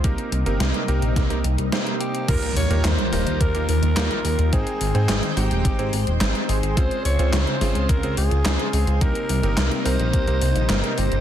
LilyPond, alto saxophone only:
\new Staff \with { instrumentName = "Alto saxophone" } { \time 4/4 \key ees \mixolydian \tempo 4 = 107 r2. r8 g'8 | bes'8 des''8 c''4 bes'8 bes'4. | aes'4. g'4. r8 aes'8 | c''8 des''8 c''4 bes'8 aes'4. |
bes'4. c''4. bes'8 c''8 | }